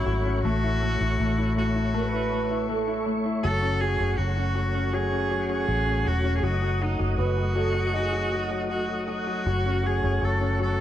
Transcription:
Already playing: grand piano F#3 C#4, tonewheel organ A3 C#5 F#5 C#6, cello E4
0.06 fingered electric bass G#1, grand piano F#3
0.25 grand piano C#4
0.43 fingered electric bass A1, tonewheel organ A3 E5, grand piano A3, cello F#4
0.64 grand piano E4
0.83 grand piano A3
1.01 fingered electric bass A1, grand piano E4
1.20 fingered electric bass A1, grand piano A3
1.38 grand piano E4
1.57 grand piano A3, cello F#4
1.75 grand piano E4
1.94 grand piano A3, french horn section B4
2.13 grand piano E4
2.32 grand piano A3
2.50 grand piano E4
2.69 grand piano A3, french horn section A4
2.88 grand piano E4
3.06 grand piano A3
3.25 grand piano E4
3.44 fingered electric bass F#1, grand piano F#3, cello A4, tonewheel organ F#5
3.62 grand piano C#4
3.81 grand piano F#3, cello G#4
4.00 fingered electric bass F#1, grand piano C#4
4.18 fingered electric bass F#1, grand piano F#3, cello F#4
4.37 grand piano C#4
4.55 grand piano F#3
4.75 grand piano C#4
4.93 grand piano F#3, cello G#4
5.12 grand piano C#4
5.31 grand piano F#3
5.49 grand piano C#4, cello G#4
5.68 fingered electric bass A1, grand piano F#3
5.86 grand piano C#4
6.05 fingered electric bass E1, grand piano F#3, cello F#4
6.24 grand piano C#4
6.37 cello G#4
6.43 fingered electric bass F#1, grand piano F#3, cello F#4, tonewheel organ D#5 F#5 D#6
6.62 grand piano F#3
6.81 grand piano F#3, cello D#4
7.00 fingered electric bass F#1, grand piano F#3
7.18 fingered electric bass F#1, grand piano F#3, cello F#4, french horn section B4
7.38 grand piano F#3
7.56 grand piano F#3, french horn section A4
7.75 grand piano F#3
7.94 grand piano D#4, french horn section G#4
8.13 grand piano F#3
8.32 grand piano F#3, french horn section F#4
8.51 grand piano F#3
8.70 grand piano F#3, cello F#4
8.89 grand piano F#3
9.08 grand piano F#3, cello F#4
9.27 grand piano F#3
9.46 fingered electric bass F#1, grand piano F#3, tonewheel organ C#5 C#6
9.66 grand piano C#4
9.84 grand piano F#3, cello G#4
10.03 fingered electric bass F#1, grand piano C#4
10.22 fingered electric bass F#1, grand piano F#3, cello A4
10.41 grand piano C#4
10.60 grand piano F#3, cello A4

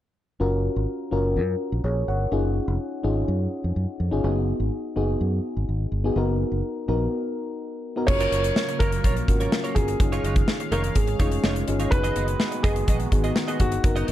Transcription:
0.40 fingered electric bass F#1, fm electric piano C#4 F4 F#4 A#4
0.76 fingered electric bass G#1
1.11 fingered electric bass F#1, fm electric piano C#4 F4 F#4 A#4
1.36 fingered electric bass F#2
1.72 fingered electric bass A#1
1.84 fingered electric bass A#1, fm electric piano G#4 C#5
2.08 fingered electric bass G1, fm electric piano C#5 F#5
2.32 fingered electric bass F#1, fm electric piano C#4 D#4 F4 G#4
2.68 fingered electric bass F1
3.03 fingered electric bass G#1, fm electric piano C#4 D#4 F4 G#4
3.28 fingered electric bass F#2
3.64 fingered electric bass F2
3.76 fingered electric bass F#2
4.00 fingered electric bass F2
4.11 fingered electric bass G1, fm electric piano C#4 D#4 F4 G#4
4.24 fingered electric bass F#1, fm electric piano B3 D#4 F#4 G#4
4.60 fingered electric bass G#1
4.96 fingered electric bass F#1, fm electric piano B3 D#4 F#4 G#4
5.21 fingered electric bass F#2
5.57 fingered electric bass G#1
5.69 fingered electric bass G#1
5.92 fingered electric bass G1
6.04 fm electric piano B3 D#4 F#4 G#4
6.16 fingered electric bass F#1, fm electric piano B3 D#4 F#4 A#4
6.52 fingered electric bass F#1
6.88 fingered electric bass A#1, fm electric piano B3 D#4 F#4 A#4
7.96 fm electric piano B3 D#4 F#4 A#4
8.07 fingered electric bass F#1, analog synth pad C#3 F#3 A#3 F5, grand piano C#5, muted clean electric guitar stroke, kick, crash
8.15 fm electric piano A#4
8.20 clean electric guitar A#3 F4 A#4 C#5, closed hi-hat
8.32 fingered electric bass F#1, clean electric guitar A#3 F4 A#4 C#5, closed hi-hat
8.44 muted clean electric guitar stroke, closed hi-hat
8.56 muted clean electric guitar stroke, snare
8.69 muted clean electric guitar stroke, closed hi-hat
8.79 fingered electric bass F#1, clean electric guitar A#3 F4 A#4 C#5, grand piano A#4, kick, closed hi-hat
8.92 muted clean electric guitar stroke, closed hi-hat
9.04 fingered electric bass A#1, clean electric guitar A#3 F4 A#4 C#5, kick, closed hi-hat
9.16 muted clean electric guitar stroke, closed hi-hat
9.28 fingered electric bass G#1, fm electric piano C#4 F4 F#4 A#4, muted clean electric guitar stroke, kick, closed hi-hat
9.40 clean electric guitar A#3 F4 A#4 C#5, closed hi-hat
9.52 muted clean electric guitar stroke, snare
9.64 clean electric guitar A#3 F4 A#4 C#5, closed hi-hat
9.75 fingered electric bass G1, fm electric piano C#4 F4 F#4 A#4, grand piano G#4, kick, closed hi-hat
9.88 muted clean electric guitar stroke, closed hi-hat
10.00 fingered electric bass F#1, analog synth pad D#3 G#3 C#4, fm electric piano C#4 D#4 F4 G#4, muted clean electric guitar stroke, kick, closed hi-hat
10.12 clean electric guitar G#3 D#4 F4 C#5, closed hi-hat
10.24 fingered electric bass F#1, clean electric guitar G#3 D#4 F4 C#5, closed hi-hat
10.36 muted clean electric guitar stroke, kick, closed hi-hat
10.48 muted clean electric guitar stroke, snare
10.60 muted clean electric guitar stroke, closed hi-hat
10.71 fingered electric bass F1, clean electric guitar G#3 D#4 F4 C#5, grand piano A#4, closed hi-hat
10.84 muted clean electric guitar stroke, closed hi-hat
10.95 fingered electric bass G#1, grand piano G#4, muted clean electric guitar stroke, kick, closed hi-hat
11.07 muted clean electric guitar stroke, closed hi-hat
11.19 fingered electric bass F1, clean electric guitar G#3 D#4 F4 C#5, fm electric piano C#4 D#4 F4 G#4, kick, closed hi-hat
11.32 muted clean electric guitar stroke, closed hi-hat
11.44 fingered electric bass F1, clean electric guitar G#3 D#4 F4 C#5, snare
11.56 muted clean electric guitar stroke, closed hi-hat
11.68 fingered electric bass G1, fm electric piano C#4 D#4 F4 G#4, muted clean electric guitar stroke, closed hi-hat
11.80 clean electric guitar G#3 D#4 F4 C#5, closed hi-hat
11.91 fingered electric bass F#1, analog synth pad D#3 B3 F#4, fm electric piano B3 D#4 F#4, grand piano B4, muted clean electric guitar stroke, kick, closed hi-hat
12.04 clean electric guitar B3 F#4 G#4 D#5, closed hi-hat
12.16 fingered electric bass F#1, clean electric guitar B3 F#4 G#4 D#5, closed hi-hat
12.28 muted clean electric guitar stroke, closed hi-hat
12.40 muted clean electric guitar stroke, snare
12.52 muted clean electric guitar stroke, closed hi-hat
12.63 fingered electric bass F#1, clean electric guitar B3 F#4 G#4 D#5, grand piano G#4, kick, closed hi-hat
12.76 muted clean electric guitar stroke, closed hi-hat
12.88 fingered electric bass A#1, clean electric guitar B3 F#4 G#4 D#5, kick, closed hi-hat
13.00 muted clean electric guitar stroke, closed hi-hat
13.12 fingered electric bass G#1, fm electric piano B3 D#4 F#4 G#4, muted clean electric guitar stroke, kick, closed hi-hat
13.24 clean electric guitar B3 F#4 G#4 D#5, closed hi-hat
13.36 muted clean electric guitar stroke, snare
13.48 clean electric guitar B3 F#4 G#4 D#5, closed hi-hat
13.59 fingered electric bass G1, fm electric piano B3 D#4 F#4 G#4, grand piano F#4, muted clean electric guitar stroke, kick, closed hi-hat
13.72 muted clean electric guitar stroke, closed hi-hat
13.84 fingered electric bass F#1, analog synth pad D#3 B3 F#4, fm electric piano B3 D#4 F#4 A#4, muted clean electric guitar stroke, kick, closed hi-hat
13.96 clean electric guitar D#4 F#4 A#4 D#5, closed hi-hat
14.07 fingered electric bass F#1, clean electric guitar D#4 F#4 A#4 D#5, closed hi-hat

